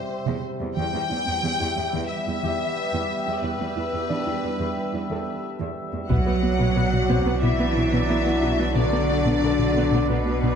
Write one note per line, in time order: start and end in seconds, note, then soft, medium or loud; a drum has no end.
0.00 0.77 G3 medium
0.00 0.76 C4 medium
0.00 0.76 G4 medium
0.00 0.41 C5 medium
0.00 0.77 E5 medium
0.26 0.34 E2 medium
0.26 0.36 C3 medium
0.60 0.67 E2 soft
0.60 0.70 G3 soft
0.76 0.84 E2 medium
0.76 0.87 E3 medium
0.76 6.07 G3 medium
0.76 6.10 B3 medium
0.76 6.07 G4 medium
0.76 6.07 E5 medium
0.76 2.06 G5 medium
0.93 1.01 E2 soft
0.93 1.03 B3 medium
1.09 1.17 E2 soft
1.09 1.20 E4 soft
1.26 1.34 E2 soft
1.26 1.36 B3 soft
1.43 1.50 E2 soft
1.43 1.53 E3 medium
1.60 1.67 E2 soft
1.60 1.70 E4 medium
1.76 1.83 E2 soft
1.76 1.86 G3 soft
1.93 2.00 E2 medium
1.93 2.03 E3 medium
2.09 3.43 E5 medium
2.27 2.34 E2 soft
2.27 2.37 E4 soft
2.43 2.50 E2 soft
2.43 2.53 E3 medium
2.43 4.40 G4 soft
2.93 3.00 E2 soft
2.93 3.04 E3 medium
3.26 3.34 E2 soft
3.26 3.37 B3 medium
3.43 3.50 E2 soft
3.43 3.53 E3 medium
3.43 5.44 B4 medium
3.60 3.66 E2 soft
3.60 3.70 B3 medium
3.77 3.83 E2 soft
3.77 3.87 E4 soft
3.93 4.00 E2 soft
3.93 4.03 B3 soft
4.09 4.16 E2 soft
4.09 4.20 E3 medium
4.09 6.06 D4 soft
4.09 6.06 D5 soft
4.26 4.33 E2 soft
4.26 4.37 E4 soft
4.43 4.50 E2 soft
4.43 4.53 G3 soft
4.59 4.66 E2 soft
4.59 4.70 E3 medium
4.93 5.00 E2 soft
4.93 5.03 E4 soft
5.10 5.17 E2 soft
5.10 5.20 E3 medium
5.10 6.07 A4 soft
5.59 5.67 E2 soft
5.59 5.70 E3 medium
5.93 6.00 E2 soft
5.93 6.03 B3 medium
6.09 10.55 B1 medium
6.09 6.20 B2 medium
6.09 7.39 F#3 medium
6.09 10.55 F#3 medium
6.09 6.16 B3 soft
6.09 6.20 B3 medium
6.09 10.55 D4 medium
6.09 7.39 F#4 medium
6.09 10.55 F#4 medium
6.09 10.55 D5 medium
6.09 7.39 F#5 medium
6.09 taiko medium
6.26 6.33 B3 soft
6.26 6.37 B3 medium
6.26 6.36 F#4 medium
6.42 6.49 B3 soft
6.42 6.53 B3 medium
6.42 6.53 F#4 soft
6.59 6.70 B2 medium
6.59 6.66 B3 soft
6.59 6.69 B3 medium
6.76 6.87 B2 soft
6.76 6.83 B3 soft
6.76 6.86 B4 medium
6.93 7.03 B2 soft
7.09 7.20 B2 medium
7.09 7.19 B3 medium
7.09 7.16 B3 soft
7.09 9.06 C4 soft
7.09 9.06 C5 soft
7.09 taiko soft
7.26 7.36 B2 medium
7.26 7.33 B3 soft
7.26 7.37 B4 soft
7.42 7.53 B2 medium
7.42 8.74 E3 medium
7.42 7.49 B3 soft
7.42 7.54 B3 medium
7.42 8.77 E4 medium
7.42 8.74 E5 medium
7.59 7.66 B3 soft
7.59 7.70 B3 soft
7.59 7.70 F#4 soft
7.76 7.87 B2 soft
7.76 7.83 B3 soft
7.76 7.87 D4 medium
7.93 8.03 B2 medium
7.93 8.00 B3 medium
7.93 8.03 B3 medium
8.10 8.17 B3 soft
8.10 8.20 B3 soft
8.10 8.21 F#4 medium
8.26 8.36 B3 medium
8.26 8.33 B3 soft
8.26 8.38 F#4 soft
8.43 8.53 B2 medium
8.43 8.50 B3 soft
8.43 8.54 B3 medium
8.59 8.69 B3 medium
8.59 8.66 B3 soft
8.59 8.70 F#4 soft
8.75 8.86 B2 medium
8.75 10.08 D3 medium
8.75 8.83 B3 soft
8.75 8.87 B3 medium
8.75 10.10 D4 medium
8.75 10.11 D5 medium
8.92 8.99 B3 soft
8.92 9.03 B3 medium
8.92 9.04 F#4 medium
9.09 9.20 B3 soft
9.09 9.17 B3 soft
9.09 9.21 F#4 soft
9.26 9.36 B2 medium
9.26 9.33 B3 soft
9.26 9.37 B3 medium
9.42 9.53 B2 soft
9.42 9.50 B3 soft
9.42 10.55 A4 soft
9.42 9.54 B4 medium
9.59 9.69 B2 soft
9.74 9.85 B2 medium
9.74 9.84 B3 medium
9.74 9.87 B3 medium
9.92 10.02 B2 medium
9.92 10.00 B3 soft
9.92 10.04 B4 medium
10.09 10.20 B2 medium
10.09 10.55 B2 medium
10.09 10.17 B3 soft
10.09 10.55 B3 medium
10.09 10.21 B3 medium
10.09 10.55 B4 medium
10.26 10.36 B3 soft
10.26 10.35 B3 soft
10.26 10.37 F#4 soft
10.43 10.53 B2 medium
10.43 10.50 B3 soft
10.43 10.54 D4 medium